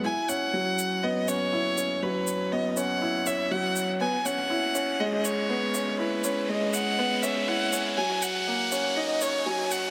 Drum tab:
SH |--x---x---x---x-|--x---x---x---x-|--x---x---x---x-|--x---x---x---x-|
T2 |----------------|----------------|---o-----o-----o|-----o-----o----|

SH |--x---x---x---x-|
T2 |-o-----o-----o--|